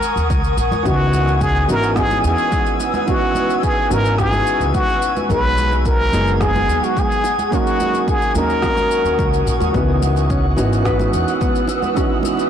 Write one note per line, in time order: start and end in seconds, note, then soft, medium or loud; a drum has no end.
0.00 0.30 A#4 medium
0.00 0.83 A#4 medium
0.00 5.26 F#5 medium
0.00 9.76 G#5 medium
0.00 0.83 C#6 medium
0.00 3.04 D#6 medium
0.00 9.75 G#6 medium
0.00 shaker medium
0.16 0.30 D#2 medium
0.16 shaker soft
0.30 0.50 C#2 medium
0.30 kick loud
0.30 high conga medium
0.30 shaker soft
0.44 shaker soft
0.57 0.67 A#1 medium
0.57 shaker medium
0.71 0.81 D#2 medium
0.71 high conga medium
0.71 shaker soft
0.83 1.62 C#2 medium
0.83 1.64 E3 medium
0.83 1.65 B3 medium
0.83 1.65 C#4 medium
0.83 1.66 D#4 medium
0.83 1.66 F#4 medium
0.83 1.44 F#4 medium
0.83 5.26 B4 medium
0.83 5.25 E6 medium
0.83 kick medium
0.83 shaker soft
1.13 high conga medium
1.13 shaker medium
1.28 high bongo soft
1.28 shaker soft
1.41 1.69 G#4 loud
1.41 kick loud
1.41 shaker soft
1.68 2.18 G#1 medium
1.68 1.93 E3 medium
1.68 1.93 B3 medium
1.68 1.93 C#4 medium
1.68 1.93 D#4 medium
1.68 1.94 F#4 medium
1.68 1.96 A#4 loud
1.68 high bongo soft
1.68 high conga medium
1.68 shaker medium
1.83 shaker soft
1.95 3.04 E3 medium
1.95 3.04 B3 medium
1.95 3.05 C#4 medium
1.95 3.05 D#4 medium
1.95 3.05 F#4 medium
1.95 2.23 G#4 loud
1.95 kick medium
1.95 cross-stick medium
1.95 low conga medium
1.95 shaker soft
2.11 high conga medium
2.11 shaker soft
2.24 2.34 E2 medium
2.24 2.77 G#4 medium
2.24 shaker medium
2.38 shaker soft
2.52 kick loud
2.52 high conga medium
2.52 shaker soft
2.66 shaker soft
2.80 high bongo medium
2.80 shaker medium
2.94 high conga medium
2.94 shaker soft
3.06 3.87 E3 medium
3.06 3.87 B3 medium
3.06 3.88 C#4 medium
3.06 3.88 D#4 medium
3.06 3.66 F#4 medium
3.06 3.89 F#4 medium
3.06 5.28 C#6 medium
3.06 kick medium
3.06 shaker soft
3.35 high conga medium
3.35 shaker medium
3.49 high bongo soft
3.49 shaker soft
3.63 3.95 G#4 medium
3.63 kick medium
3.63 shaker soft
3.90 4.40 G#1 medium
3.90 4.15 E3 medium
3.90 4.15 B3 medium
3.90 4.15 C#4 medium
3.90 4.15 D#4 medium
3.90 4.16 F#4 medium
3.90 4.20 A#4 loud
3.90 high bongo soft
3.90 high conga medium
3.90 shaker medium
4.05 shaker soft
4.17 5.26 E3 medium
4.17 5.26 B3 medium
4.17 5.26 C#4 medium
4.17 5.27 D#4 medium
4.17 5.27 F#4 medium
4.17 4.71 G#4 loud
4.17 kick loud
4.17 cross-stick medium
4.17 low conga medium
4.17 shaker soft
4.32 high conga medium
4.32 shaker soft
4.47 shaker medium
4.60 4.70 C#2 medium
4.60 shaker soft
4.74 5.14 F#4 loud
4.74 kick loud
4.74 high conga medium
4.74 shaker soft
4.89 shaker soft
5.02 shaker medium
5.16 high conga medium
5.16 shaker soft
5.28 6.07 B1 loud
5.28 6.09 F#3 medium
5.28 6.10 G#3 medium
5.28 6.10 B3 medium
5.28 6.10 D#4 medium
5.28 7.22 G#4 medium
5.28 6.11 G#4 medium
5.28 5.82 B4 loud
5.28 12.50 F#5 medium
5.28 7.22 G#5 medium
5.28 12.50 D#6 medium
5.28 kick medium
5.28 shaker soft
5.58 high conga medium
5.58 shaker medium
5.72 high bongo soft
5.72 shaker soft
5.85 6.44 A#4 loud
5.85 kick loud
5.85 shaker soft
6.13 6.62 F#1 medium
6.13 6.38 F#3 medium
6.13 6.38 G#3 medium
6.13 6.38 B3 medium
6.13 6.38 D#4 medium
6.13 6.38 G#4 medium
6.13 high bongo medium
6.13 high conga medium
6.13 shaker medium
6.28 shaker soft
6.39 7.22 F#3 medium
6.39 7.22 G#3 medium
6.39 7.23 B3 medium
6.39 7.23 D#4 medium
6.39 7.23 G#4 medium
6.39 6.86 G#4 loud
6.39 kick medium
6.39 cross-stick medium
6.39 low conga medium
6.39 shaker soft
6.56 high conga medium
6.56 shaker soft
6.68 6.78 D#2 medium
6.68 shaker medium
6.84 7.01 F#4 medium
6.84 shaker soft
6.97 7.40 G#4 medium
6.97 kick loud
6.97 high conga medium
6.97 shaker soft
7.12 shaker soft
7.24 9.72 A#4 medium
7.24 9.72 C#6 medium
7.24 high bongo medium
7.24 shaker medium
7.39 high conga medium
7.39 shaker soft
7.48 8.31 F#3 medium
7.48 8.32 A#3 medium
7.48 7.56 G#4 medium
7.52 8.32 C#4 medium
7.52 8.33 D#4 medium
7.52 8.11 F#4 medium
7.52 8.33 A#4 medium
7.52 kick medium
7.52 shaker soft
7.67 shaker soft
7.80 high conga medium
7.80 shaker medium
7.93 high bongo medium
7.93 shaker soft
8.08 8.40 G#4 medium
8.08 kick loud
8.08 shaker soft
8.22 shaker soft
8.35 8.84 D#2 medium
8.35 8.60 F#3 medium
8.35 8.60 A#3 medium
8.35 8.60 C#4 medium
8.35 8.60 D#4 medium
8.35 8.61 A#4 medium
8.35 9.48 A#4 medium
8.35 high bongo soft
8.35 high conga medium
8.35 shaker medium
8.50 shaker soft
8.62 9.70 F#3 medium
8.62 9.71 A#3 medium
8.62 9.71 C#4 medium
8.62 9.72 D#4 medium
8.62 9.72 A#4 medium
8.62 kick medium
8.62 cross-stick medium
8.62 low conga medium
8.62 shaker soft
8.77 high conga medium
8.77 shaker soft
8.91 shaker medium
9.05 9.19 D#2 medium
9.05 shaker soft
9.19 9.38 C#2 medium
9.19 kick loud
9.19 high conga medium
9.19 shaker soft
9.34 shaker soft
9.46 9.56 A#1 medium
9.46 shaker medium
9.60 9.70 D#2 medium
9.60 high conga medium
9.60 shaker soft
9.73 10.51 C#2 medium
9.73 10.54 E3 medium
9.73 10.54 B3 medium
9.73 10.01 B3 medium
9.73 10.54 C#4 medium
9.73 10.55 D#4 medium
9.73 10.55 F#4 medium
9.73 12.50 B4 medium
9.73 12.50 F#5 medium
9.73 12.50 E6 medium
9.73 12.50 F#6 medium
9.73 kick loud
9.73 shaker soft
10.02 high conga medium
10.02 shaker medium
10.16 high bongo medium
10.16 shaker soft
10.30 10.45 C#4 medium
10.30 kick loud
10.30 shaker soft
10.56 11.07 G#1 medium
10.56 10.82 E3 medium
10.56 10.82 B3 medium
10.56 10.82 C#4 medium
10.56 10.82 D#4 medium
10.56 10.82 F#4 medium
10.56 high bongo medium
10.56 high conga medium
10.56 shaker medium
10.73 shaker soft
10.84 11.92 E3 medium
10.84 11.93 B3 medium
10.84 11.93 C#4 medium
10.84 11.94 D#4 medium
10.84 11.94 F#4 medium
10.84 11.11 B4 medium
10.84 kick loud
10.84 cross-stick medium
10.84 low conga medium
10.84 shaker soft
10.99 high conga medium
10.99 shaker soft
11.13 11.23 E2 medium
11.13 shaker medium
11.28 shaker soft
11.41 11.68 B3 medium
11.41 kick loud
11.41 high conga medium
11.41 shaker soft
11.56 shaker soft
11.68 high bongo medium
11.68 shaker medium
11.82 high conga medium
11.82 shaker soft
11.95 12.50 E3 medium
11.95 12.50 B3 medium
11.95 12.50 C#4 medium
11.95 12.12 C#4 medium
11.95 12.50 D#4 medium
11.95 12.50 F#4 medium
11.95 kick loud
11.95 shaker soft
12.23 high conga medium
12.23 shaker medium
12.37 high bongo soft
12.37 shaker soft